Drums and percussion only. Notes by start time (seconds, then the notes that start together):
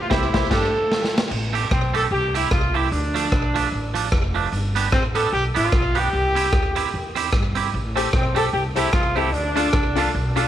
0.11 kick, snare
0.34 kick, snare
0.51 kick, snare, crash
0.92 snare
1.04 snare
1.18 snare
1.31 crash
1.55 closed hi-hat
1.71 kick, cross-stick
1.95 closed hi-hat
2.35 closed hi-hat
2.51 kick, cross-stick
2.74 open hi-hat
2.92 hi-hat pedal
3.16 closed hi-hat
3.32 kick, cross-stick
3.56 closed hi-hat
3.95 closed hi-hat
4.12 kick, cross-stick
4.35 open hi-hat
4.52 hi-hat pedal
4.76 closed hi-hat
4.92 kick, cross-stick
5.15 closed hi-hat
5.56 closed hi-hat
5.72 kick, cross-stick
5.95 closed hi-hat
6.36 closed hi-hat
6.53 kick, cross-stick
6.76 closed hi-hat
7.16 closed hi-hat
7.33 kick, cross-stick
7.55 closed hi-hat
7.97 closed hi-hat
8.13 kick, cross-stick
8.36 closed hi-hat
8.76 closed hi-hat
8.93 kick, cross-stick
9.16 open hi-hat
9.33 hi-hat pedal
9.56 closed hi-hat
9.73 kick, cross-stick
9.96 closed hi-hat
10.36 closed hi-hat